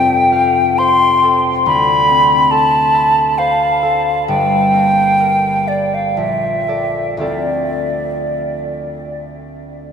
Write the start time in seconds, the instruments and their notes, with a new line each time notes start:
Already playing: harp F1 F2 C4 A4, flute G5
0.32 harp F5
0.78 harp C5, flute C6
1.23 harp A4
1.66 harp D2, flute B5
2.09 harp C4
2.51 harp A4, flute A5
2.94 harp E5
3.38 harp C5, flute F5
3.83 harp A4
4.28 harp G1, flute G5
4.73 harp A#3
5.20 harp A#4
5.67 harp D5, flute D5
5.94 flute F5
6.17 harp A#1, flute E5
6.68 harp A4 D5
7.17 harp D2 C4 F4 A4
7.21 harp D5, flute D5